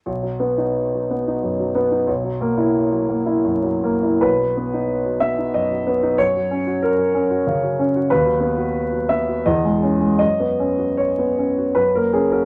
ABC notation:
X:1
M:3/4
L:1/16
Q:1/4=88
K:B
V:1 name="Grand piano"
z12 | z12 | B6 e2 d4 | c4 A6 z2 |
B6 e2 d4 | d4 c4 B A G A |]
V:2 name="Grand piano"
B,,, F, B, D2 F, B, D F,, F, B, D | B,,, F, A, E2 F, A, E F,, F, A, E | B,,, F, B, D2 F, B, D F,, F, B, D | F,, F, C F2 F, C F C, F, C F |
D,, F, B, F2 F, B, F E,, G, C G, | F,, B, C F2 B, C F F,, A, C F |]